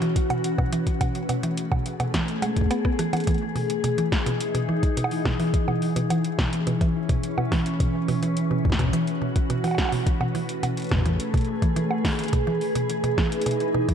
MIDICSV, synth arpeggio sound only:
0, 0, Header, 1, 2, 480
1, 0, Start_track
1, 0, Key_signature, 4, "major"
1, 0, Tempo, 566038
1, 856, Time_signature, 4, 2, 24, 8
1, 11823, End_track
2, 0, Start_track
2, 0, Title_t, "Synth arpeggio sound"
2, 0, Program_c, 0, 84
2, 15, Note_on_c, 0, 52, 77
2, 90, Note_off_c, 0, 52, 0
2, 255, Note_on_c, 0, 47, 77
2, 330, Note_off_c, 0, 47, 0
2, 495, Note_on_c, 0, 47, 106
2, 540, Note_off_c, 0, 47, 0
2, 615, Note_on_c, 0, 52, 78
2, 690, Note_off_c, 0, 52, 0
2, 855, Note_on_c, 0, 47, 82
2, 930, Note_off_c, 0, 47, 0
2, 1095, Note_on_c, 0, 47, 103
2, 1140, Note_off_c, 0, 47, 0
2, 1215, Note_on_c, 0, 52, 75
2, 1290, Note_off_c, 0, 52, 0
2, 1455, Note_on_c, 0, 47, 74
2, 1530, Note_off_c, 0, 47, 0
2, 1695, Note_on_c, 0, 47, 104
2, 1740, Note_off_c, 0, 47, 0
2, 1816, Note_on_c, 0, 52, 86
2, 1891, Note_off_c, 0, 52, 0
2, 2055, Note_on_c, 0, 56, 79
2, 2130, Note_off_c, 0, 56, 0
2, 2295, Note_on_c, 0, 59, 99
2, 2405, Note_off_c, 0, 59, 0
2, 2415, Note_on_c, 0, 59, 103
2, 2528, Note_off_c, 0, 59, 0
2, 2535, Note_on_c, 0, 52, 76
2, 2580, Note_off_c, 0, 52, 0
2, 2655, Note_on_c, 0, 52, 77
2, 2700, Note_off_c, 0, 52, 0
2, 2775, Note_on_c, 0, 52, 83
2, 2850, Note_off_c, 0, 52, 0
2, 3015, Note_on_c, 0, 47, 78
2, 3090, Note_off_c, 0, 47, 0
2, 3255, Note_on_c, 0, 47, 105
2, 3300, Note_off_c, 0, 47, 0
2, 3375, Note_on_c, 0, 52, 77
2, 3451, Note_off_c, 0, 52, 0
2, 3615, Note_on_c, 0, 47, 79
2, 3690, Note_off_c, 0, 47, 0
2, 3855, Note_on_c, 0, 47, 100
2, 3900, Note_off_c, 0, 47, 0
2, 3975, Note_on_c, 0, 52, 78
2, 4050, Note_off_c, 0, 52, 0
2, 4215, Note_on_c, 0, 47, 80
2, 4290, Note_off_c, 0, 47, 0
2, 4455, Note_on_c, 0, 47, 100
2, 4500, Note_off_c, 0, 47, 0
2, 4576, Note_on_c, 0, 52, 79
2, 4651, Note_off_c, 0, 52, 0
2, 4816, Note_on_c, 0, 47, 79
2, 4890, Note_off_c, 0, 47, 0
2, 5055, Note_on_c, 0, 47, 105
2, 5100, Note_off_c, 0, 47, 0
2, 5175, Note_on_c, 0, 52, 86
2, 5250, Note_off_c, 0, 52, 0
2, 5415, Note_on_c, 0, 47, 78
2, 5490, Note_off_c, 0, 47, 0
2, 5655, Note_on_c, 0, 47, 102
2, 5701, Note_off_c, 0, 47, 0
2, 5775, Note_on_c, 0, 52, 78
2, 5850, Note_off_c, 0, 52, 0
2, 6015, Note_on_c, 0, 47, 78
2, 6090, Note_off_c, 0, 47, 0
2, 6256, Note_on_c, 0, 47, 101
2, 6301, Note_off_c, 0, 47, 0
2, 6375, Note_on_c, 0, 52, 77
2, 6450, Note_off_c, 0, 52, 0
2, 6615, Note_on_c, 0, 47, 83
2, 6690, Note_off_c, 0, 47, 0
2, 6855, Note_on_c, 0, 47, 103
2, 6900, Note_off_c, 0, 47, 0
2, 6975, Note_on_c, 0, 52, 78
2, 7050, Note_off_c, 0, 52, 0
2, 7215, Note_on_c, 0, 47, 77
2, 7290, Note_off_c, 0, 47, 0
2, 7455, Note_on_c, 0, 47, 108
2, 7500, Note_off_c, 0, 47, 0
2, 7575, Note_on_c, 0, 52, 84
2, 7650, Note_off_c, 0, 52, 0
2, 7815, Note_on_c, 0, 47, 79
2, 7890, Note_off_c, 0, 47, 0
2, 8055, Note_on_c, 0, 47, 102
2, 8100, Note_off_c, 0, 47, 0
2, 8175, Note_on_c, 0, 52, 77
2, 8250, Note_off_c, 0, 52, 0
2, 8415, Note_on_c, 0, 47, 78
2, 8490, Note_off_c, 0, 47, 0
2, 8655, Note_on_c, 0, 47, 105
2, 8700, Note_off_c, 0, 47, 0
2, 8775, Note_on_c, 0, 52, 78
2, 8850, Note_off_c, 0, 52, 0
2, 9015, Note_on_c, 0, 47, 85
2, 9090, Note_off_c, 0, 47, 0
2, 9255, Note_on_c, 0, 47, 101
2, 9300, Note_off_c, 0, 47, 0
2, 9374, Note_on_c, 0, 52, 80
2, 9450, Note_off_c, 0, 52, 0
2, 9615, Note_on_c, 0, 47, 78
2, 9690, Note_off_c, 0, 47, 0
2, 9855, Note_on_c, 0, 52, 79
2, 9930, Note_off_c, 0, 52, 0
2, 9974, Note_on_c, 0, 52, 83
2, 10087, Note_off_c, 0, 52, 0
2, 10215, Note_on_c, 0, 51, 78
2, 10260, Note_off_c, 0, 51, 0
2, 10455, Note_on_c, 0, 47, 103
2, 10500, Note_off_c, 0, 47, 0
2, 10576, Note_on_c, 0, 52, 77
2, 10651, Note_off_c, 0, 52, 0
2, 10815, Note_on_c, 0, 47, 78
2, 10890, Note_off_c, 0, 47, 0
2, 11055, Note_on_c, 0, 47, 98
2, 11100, Note_off_c, 0, 47, 0
2, 11175, Note_on_c, 0, 52, 76
2, 11250, Note_off_c, 0, 52, 0
2, 11415, Note_on_c, 0, 47, 86
2, 11490, Note_off_c, 0, 47, 0
2, 11655, Note_on_c, 0, 47, 101
2, 11700, Note_off_c, 0, 47, 0
2, 11775, Note_on_c, 0, 52, 77
2, 11823, Note_off_c, 0, 52, 0
2, 11823, End_track
0, 0, End_of_file